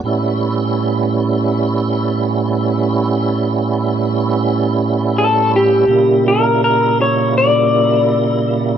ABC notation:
X:1
M:4/4
L:1/8
Q:1/4=82
K:A
V:1 name="Clean electric guitar"
z8 | z6 A =G- | =G ^A A c d4 |]
V:2 name="Tonewheel organ" clef=bass
[A,,=G,B,CE]8- | [A,,=G,B,CE]8 | [^A,,C,=G,^A,E]8 |]